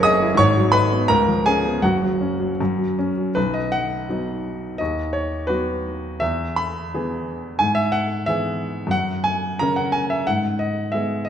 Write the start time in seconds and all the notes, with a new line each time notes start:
Already playing: F#1 F#2 G#3 E4 G#4 A#4 C#5 D#5 C#6 D#6
0.03 G#4 D#5 D#6
0.22 E4
0.34 G#1 G#2 C#6
0.39 C#5
0.57 F#3
0.72 D#4 B4 B5
0.92 B3
1.08 C#2 A#4 A#5
1.28 F3
1.46 C#4 G#4 G#5
1.65 B3
1.82 F#1 F#2 F#4 F#5
2.02 F#3
2.21 C#4
2.40 F#3
2.61 F#2
2.78 F#3
2.99 C#4
3.18 F#3
3.35 B1 B4
3.54 D#5
3.72 F#5
4.09 F#3 B3 D#4
4.78 D#2 D#5
5.13 C#5
5.47 F#3 B3 F#4 B4
6.20 E2 E5
6.56 B5
6.94 E3 B3 G#4
7.59 G#2 G#5
7.75 E5
7.92 F#5
8.26 E3 B3 G#4 E5
8.87 F#2
8.91 F#5
9.24 G#5
9.59 C#3 C#4 A#4 A#5
9.76 F#5
9.92 G#5
10.10 E5
10.27 G#2 F#5
10.59 D#5
10.92 G#3 B3 G#4 E5
11.25 D#5